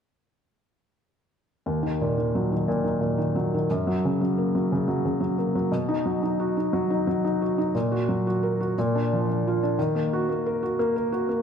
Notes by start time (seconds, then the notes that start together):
1.66 D#2
1.83 D#3
2.01 A#2
2.18 D#3
2.35 F#3
2.52 D#3
2.68 A#2
2.84 D#3
3.01 A#2
3.18 D#3
3.35 F#3
3.54 D#3
3.70 F#2
3.87 F#3
4.05 C#3
4.21 F#3
4.38 A#3
4.55 F#3
4.72 C#3
4.88 F#3
5.05 C#3
5.21 F#3
5.38 A#3
5.55 F#3
5.72 B2
5.89 D#4
6.06 F#3
6.23 D#4
6.40 F#4
6.57 D#4
6.73 F#3
6.90 D#4
7.07 F#3
7.24 D#4
7.42 F#4
7.58 D#4
7.75 A#2
7.92 F#4
8.09 F#3
8.27 F#4
8.43 A#4
8.61 F#4
8.78 A#2
8.95 D4
9.13 F3
9.29 D4
9.47 F4
9.63 D4
9.79 D#3
9.95 A#3
10.13 F#4
10.29 A#3
10.46 A#4
10.63 F#4
10.79 A#3
10.96 A#4
11.12 F#4
11.29 A#3